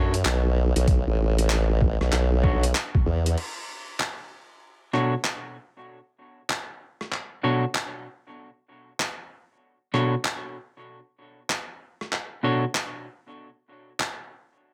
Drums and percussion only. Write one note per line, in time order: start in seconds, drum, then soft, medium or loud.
0.14 closed hi-hat medium
0.25 clap loud
0.25 closed hi-hat soft
0.76 closed hi-hat medium
0.88 kick loud
0.88 closed hi-hat medium
1.39 closed hi-hat medium
1.50 clap loud
1.50 closed hi-hat medium
1.81 kick medium
2.01 cross-stick soft
2.12 clap medium
2.12 closed hi-hat medium
2.44 kick loud
2.63 closed hi-hat medium
2.75 clap loud
2.75 closed hi-hat medium
2.95 kick medium
3.26 closed hi-hat medium
3.38 crash medium
4.00 clap loud
4.93 cross-stick soft
5.24 clap loud
6.50 clap loud
7.01 cross-stick soft
7.12 clap medium
7.75 clap loud
9.00 clap loud
9.94 cross-stick soft
10.25 clap loud
11.50 clap loud
12.01 cross-stick soft
12.13 clap medium
12.75 clap loud
14.00 clap loud